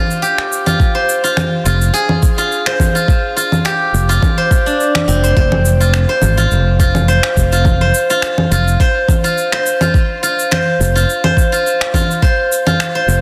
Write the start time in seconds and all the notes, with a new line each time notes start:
Already playing: F4 G4 C5
0.11 shaker
0.22 G4, shaker
0.38 finger snap
0.52 shaker
0.66 F4, low conga, shaker
0.80 kick, shaker
0.95 C5
1.09 shaker
1.24 F4, shaker
1.37 finger snap, low conga, shaker
1.65 F1 F4, shaker
1.82 shaker
1.94 G#4, shaker
2.09 low conga
2.23 kick, shaker
2.38 F4, shaker
2.52 shaker
2.66 C5, finger snap
2.80 kick, low conga, shaker
2.95 F4, shaker
3.08 kick, shaker
3.37 F4, shaker
3.52 low conga, shaker
3.65 G4, finger snap, shaker
3.94 F1, shaker
4.09 F4, shaker
4.22 kick, low conga, shaker
4.38 C5
4.51 kick, shaker
4.66 D4, shaker
4.80 shaker
4.95 finger snap, low conga
5.08 F1 C4, shaker
5.24 C5, shaker
5.37 F1 C5, kick, shaker
5.52 low conga
5.65 shaker
5.80 F4, shaker
5.94 finger snap, shaker
6.09 C5
6.22 G#1, low conga, shaker
6.37 F4, shaker
6.51 F1, shaker
6.80 F4, kick, shaker
6.95 low conga, shaker
7.08 C5, shaker
7.23 finger snap
7.37 F1, kick, shaker
7.52 F4, shaker
7.65 kick, low conga, shaker
7.81 C5
7.94 shaker
8.10 F4, shaker
8.22 finger snap, shaker
8.38 low conga
8.51 F1 F4, shaker
8.68 shaker
8.80 C5, kick, shaker
9.08 kick, low conga, shaker
9.24 F4, shaker
9.38 shaker
9.52 C5, finger snap
9.66 shaker
9.81 F4, low conga, shaker
9.94 kick, shaker
10.23 F4, shaker
10.39 shaker
10.51 C5, finger snap, low conga, shaker
10.80 F1, shaker
10.95 F4, shaker
11.10 shaker
11.24 C5, low conga
11.37 kick, shaker
11.52 F4, shaker
11.67 shaker
11.81 finger snap
11.94 F4, kick, low conga, shaker
12.11 shaker
12.22 C5, kick, shaker
12.52 shaker
12.66 F4, low conga, shaker
12.80 finger snap, shaker
12.95 C5
13.08 F1, shaker